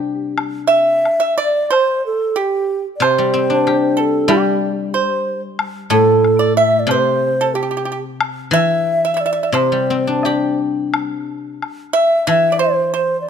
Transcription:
Already playing: C3 G3 C4 D4 G4
0.38 high woodblock
0.67 E5
1.05 high woodblock
1.20 E5
1.38 D5
1.71 C5, high woodblock
2.06 A4
2.36 G4
2.96 D5
3.00 C3 C5, high woodblock
3.18 G3
3.34 C4
3.50 D4
3.64 G4 A4, high woodblock
3.97 A4
4.28 G3 G4, high woodblock
4.94 C5
5.59 high woodblock
5.90 A2 A4
6.24 high woodblock
6.39 D5
6.57 E5
6.79 D5
6.87 C3, high woodblock
6.91 C5
7.41 A4
7.54 G4
7.63 G4
7.71 G4
7.77 G4
7.85 G4
7.92 G4
8.21 high woodblock
8.51 E3 E5
9.05 E5
9.14 E5
9.21 D5
9.26 E5
9.33 E5
9.43 E5
9.52 C3 C5, high woodblock
9.72 G3
9.90 C4
10.07 D4
10.23 G4 D5, low woodblock
10.94 high woodblock
11.62 high woodblock
11.93 E5
12.27 E3 E5, high woodblock
12.52 D5
12.59 C5
12.94 C5
13.21 D5

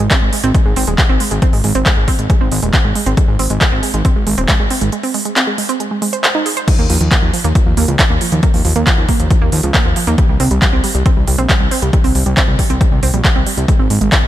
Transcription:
0.11 C4, kick, clap, closed hi-hat
0.22 G#1 G#3
0.33 G#3, open hi-hat
0.43 G#1 C4, closed hi-hat
0.55 G#3, kick, closed hi-hat
0.66 G#1 G#3
0.76 G#1 C4, open hi-hat
0.87 D#1 G#3, closed hi-hat
0.98 G#3, kick, clap, closed hi-hat
1.09 G#1 C4
1.20 G#3, open hi-hat
1.31 G#1 G#3, closed hi-hat
1.42 C4, kick, closed hi-hat
1.53 G#1 G#3, open hi-hat
1.64 G#1 G#3, open hi-hat
1.75 G#1 C4, closed hi-hat
1.86 G#3, kick, clap, closed hi-hat
1.97 G#1 G#3
2.08 C4, kick, open hi-hat
2.19 G#1 G#3, closed hi-hat
2.30 G#3, kick, closed hi-hat
2.41 G#1 C4
2.52 G#1 G#3, open hi-hat
2.63 D#1 G#3, closed hi-hat
2.74 C4, kick, clap, closed hi-hat
2.84 G#1 G#3
2.95 G#3, open hi-hat
3.06 G#1 C4, closed hi-hat
3.17 G#3, kick, closed hi-hat
3.28 G#1 G#3
3.39 G#1 C4, open hi-hat
3.50 G#1 G#3, closed hi-hat
3.61 G#3, kick, clap, closed hi-hat
3.72 G#1 C4
3.83 G#3, open hi-hat
3.94 G#1 G#3, closed hi-hat
4.05 C4, kick, closed hi-hat
4.16 G#1 G#3
4.27 G#1 G#3, open hi-hat
4.38 D#1 C4, closed hi-hat
4.49 G#3, kick, clap, closed hi-hat
4.60 G#1 G#3
4.70 C4, open hi-hat
4.81 G#1 G#3, closed hi-hat
4.92 G#3, closed hi-hat
5.03 C4, open hi-hat
5.14 G#3, open hi-hat
5.25 G#3, closed hi-hat
5.36 C4, clap, closed hi-hat
5.47 G#3
5.58 G#3, open hi-hat
5.69 C4, closed hi-hat
5.80 G#3, closed hi-hat
5.91 G#3
6.02 G#3, open hi-hat
6.13 C5, closed hi-hat
6.24 C5, clap, closed hi-hat
6.35 D#4
6.46 G#4, open hi-hat
6.57 C5, closed hi-hat
6.68 F3, kick, closed hi-hat, crash
6.79 D#2 A#3
6.90 D#2 F3, open hi-hat
7.01 D#2 F3, closed hi-hat
7.12 A#3, kick, clap, closed hi-hat
7.22 D#2 F3
7.34 F3, open hi-hat
7.44 D#2 A#3, closed hi-hat
7.55 F3, kick, closed hi-hat
7.66 D#2 F3
7.77 D#2 A#3, open hi-hat
7.88 C#2 F3, closed hi-hat
7.99 F3, kick, clap, closed hi-hat
8.10 D#2 A#3
8.21 F3, open hi-hat
8.32 D#2 F3, closed hi-hat
8.43 A#3, kick, closed hi-hat
8.54 D#2 F3, open hi-hat
8.65 D#2 F3, open hi-hat
8.76 D#2 A#3, closed hi-hat
8.87 F3, kick, clap, closed hi-hat
8.98 D#2 F3
9.09 A#3, kick, open hi-hat
9.20 D#2 F3, closed hi-hat
9.30 F3, kick, closed hi-hat
9.42 D#2 A#3
9.52 D#2 F3, open hi-hat
9.63 C#2 F3, closed hi-hat
9.74 A#3, kick, clap, closed hi-hat
9.85 D#2 F3
9.96 F3, open hi-hat
10.07 D#2 A#3, closed hi-hat
10.18 G3, kick, closed hi-hat
10.29 C2 G3
10.40 C2 C4, open hi-hat
10.51 C2 G3, closed hi-hat
10.62 G3, kick, clap, closed hi-hat
10.73 C2 C4
10.84 G3, open hi-hat
10.95 C2 G3, closed hi-hat
11.06 C4, kick, closed hi-hat
11.17 C2 G3
11.28 C2 G3, open hi-hat
11.38 A#1 C4, closed hi-hat
11.49 G3, kick, clap, closed hi-hat
11.60 C2 G3
11.71 C4, open hi-hat
11.82 C2 G3, closed hi-hat
11.93 G3, kick, closed hi-hat
12.04 C2 C4, open hi-hat
12.15 C2 G3, open hi-hat
12.26 C2 G3, closed hi-hat
12.37 C4, kick, clap, closed hi-hat
12.48 C2 G3
12.59 G3, kick, open hi-hat
12.70 C2 C4, closed hi-hat
12.81 G3, kick, closed hi-hat
12.92 C2 G3
13.03 C2 C4, open hi-hat
13.14 A#1 G3, closed hi-hat
13.25 G3, kick, clap, closed hi-hat
13.35 C2 C4
13.47 G3, open hi-hat
13.57 C2 G3, closed hi-hat
13.68 G#3, kick, closed hi-hat
13.79 G#1 C4
13.90 G#1 G#3, open hi-hat
14.01 G#1 G#3, closed hi-hat
14.12 C4, kick, clap, closed hi-hat
14.23 G#1 G#3

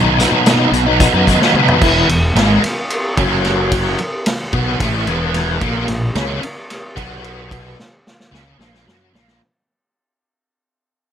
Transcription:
Already playing: B1 B2 D#3 F#3 B3 D#4
0.19 D#3 F#3 B3 D#4, snare, closed hi-hat
0.32 B2
0.46 B2 D#3 F#3 B3 D#4, snare, closed hi-hat
0.59 F#3 B3 D#4
0.72 B1, muted overdriven electric guitar stroke, closed hi-hat
0.86 F#3 B3 D#4
1.00 kick, closed hi-hat
1.14 F#2 F#3 B3 D#4
1.27 D#3 F#3 B3 D#4, kick, closed hi-hat
1.41 F#3 B3 D#4, snare
1.54 B2 D#3 F#3 B3 D#4, mid tom
1.68 floor tom
1.81 E1 E2 E3, kick, crash
2.08 E1 E2, ride
2.36 G#1 G#2 G#3, snare, ride
2.63 muted overdriven electric guitar stroke, muted fingered electric bass stroke, snare, ride
2.90 ride
3.17 F#1 F#2 F#3, kick, ride
3.45 snare, ride
3.72 kick, ride
3.98 ride
4.26 snare, ride
4.53 B1 B2 B3, kick, ride
4.79 A1 A2 A3, kick, snare, ride
5.07 E1 E2 E3, ride
5.34 snare, ride
5.60 A#1 A#2 A#3, kick, ride
5.87 A#1 A#2, snare, ride
6.15 C#2 C#3 C#4, snare, ride
6.41 muted overdriven electric guitar stroke, muted fingered electric bass stroke, ride
6.70 snare, ride
6.96 B1 B2 B3, kick, ride
7.24 ride
7.51 kick, ride
7.80 snare
8.07 snare
8.20 snare
8.31 C#2 C#3 C#4, snare
8.58 A#1 A#2 A#3, snare
8.75 snare
8.86 F#2 F#3 F#4, snare
9.13 A#1 A#2 A#3, snare
9.28 snare

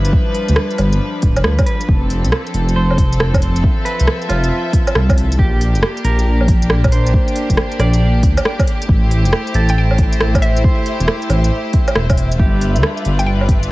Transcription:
Already playing: G1 F3 G3 D4 E4 B4
0.05 closed hi-hat
0.13 kick
0.34 open hi-hat
0.48 D2, closed hi-hat
0.56 cross-stick
0.71 closed hi-hat
0.78 G1, open hi-hat, low woodblock
0.93 closed hi-hat
1.22 D1, kick, open hi-hat
1.36 F1, closed hi-hat, low woodblock
1.44 D2, cross-stick
1.59 kick, closed hi-hat, low woodblock
1.66 B4, open hi-hat
1.81 closed hi-hat
1.88 F1 F3 C4 A4, kick
2.10 open hi-hat
2.25 C2, closed hi-hat
2.32 cross-stick
2.47 closed hi-hat
2.54 F1, open hi-hat
2.69 closed hi-hat
2.76 F1 C5
2.91 low woodblock
2.98 kick, open hi-hat
3.13 closed hi-hat
3.20 cross-stick
3.34 kick, closed hi-hat, low woodblock
3.42 open hi-hat
3.56 closed hi-hat
3.63 E5, kick
3.85 B4, open hi-hat
4.00 C2, closed hi-hat
4.07 cross-stick
4.22 closed hi-hat
4.29 F1 F4, open hi-hat, low woodblock
4.44 closed hi-hat
4.73 kick, open hi-hat
4.87 closed hi-hat, low woodblock
4.95 C2, cross-stick
5.09 kick, closed hi-hat, low woodblock
5.18 open hi-hat
5.32 closed hi-hat
5.38 A#1 A#3 D4 G4, kick
5.61 open hi-hat
5.75 F1, closed hi-hat
5.83 cross-stick
5.97 closed hi-hat
6.04 A#1 A#4, open hi-hat
6.19 closed hi-hat
6.26 A#1
6.41 low woodblock
6.48 kick, open hi-hat
6.62 closed hi-hat
6.70 cross-stick
6.84 kick, closed hi-hat, low woodblock
6.92 C5, open hi-hat
7.06 closed hi-hat
7.14 kick
7.28 closed hi-hat
7.36 open hi-hat
7.50 F1, kick, closed hi-hat
7.57 cross-stick
7.72 closed hi-hat
7.79 A#1 D5, cross-stick, open hi-hat, low woodblock
7.94 closed hi-hat
8.23 D2, kick, open hi-hat
8.37 closed hi-hat, low woodblock
8.45 cross-stick
8.59 kick, closed hi-hat, low woodblock
8.67 open hi-hat
8.82 closed hi-hat
8.89 A1 A3 E4 C5 E5, kick
9.11 open hi-hat
9.25 E1, closed hi-hat
9.33 cross-stick
9.47 closed hi-hat
9.54 A1 A4, open hi-hat
9.69 G5, closed hi-hat
9.76 A1 G5
9.91 low woodblock
9.98 kick, open hi-hat
10.13 closed hi-hat
10.21 cross-stick
10.35 kick, closed hi-hat, low woodblock
10.42 E5, open hi-hat
10.57 closed hi-hat
10.64 C5, kick
10.86 open hi-hat
11.00 E1, closed hi-hat
11.08 cross-stick
11.22 closed hi-hat
11.29 A1, open hi-hat, low woodblock
11.44 closed hi-hat
11.73 kick, open hi-hat
11.88 closed hi-hat, low woodblock
11.96 E1, cross-stick
12.10 kick, closed hi-hat, low woodblock
12.18 open hi-hat
12.32 closed hi-hat
12.39 G1 G3 D4 F4 G4 B4, kick
12.61 open hi-hat
12.76 D2, closed hi-hat
12.83 cross-stick
12.97 closed hi-hat
13.05 G1, open hi-hat
13.19 G5, closed hi-hat
13.27 G1 G5
13.41 low woodblock
13.49 kick, open hi-hat
13.63 closed hi-hat

